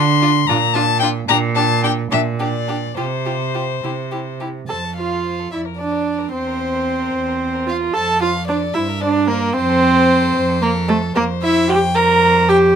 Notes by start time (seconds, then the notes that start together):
Already playing: D3 C6
0.22 D4 F4
0.47 A#2 D4 F4 A#5
0.74 D4 F4 A5
1.00 D4 F4 G5
1.28 A#2 D4 G4 A#5
1.55 D4 G4 A5
1.83 D4 G4 G5
2.11 A#2 D4 G4 E5
2.39 D4 G4 D5
2.68 D4 G4
2.97 C3 F4 G4 C5
3.26 F4 G4
3.54 F4 G4
3.83 C3 E4 G4
4.11 E4 G4
4.40 E4 G4
4.68 F2 A4 C5 A5
4.84 A4
4.96 F4 C5 F5
5.12 A4
5.25 C5
5.40 A4
5.52 F2 E4 D5 E5
5.65 A#4
5.77 D4 D5
5.92 A#4
6.05 D5
6.18 A#4
6.31 E2 C4 C5
6.47 A#4
6.60 C5
6.74 A#4
6.87 C5
7.00 A#4
7.13 E2 C5
7.28 A#4
7.40 C5
7.54 A#4
7.66 F4 C5 F5
7.81 A#4
7.93 F2 A4 C5 A5
8.09 A4
8.21 F4 C5 F5
8.36 A4
8.47 D4 C5 D5
8.62 A4
8.74 G2 E4 C5 E5
8.88 A#4
9.01 D4 C5 D5
9.16 A#4
9.28 A#3 A#4 C5
9.41 A#4
9.54 F2 C4 C5
9.69 A4
9.82 C5
9.95 A4
10.07 C5
10.21 A4
10.36 F2 C5
10.49 A4
10.62 A#3 A#4 C5
10.74 A4
10.88 A3 A4 C5
11.02 A4
11.14 F2 A#3 A#4 C5
11.42 E4 E5
11.68 G4 G5
11.95 A#4 C5 A#5
12.49 G4 G5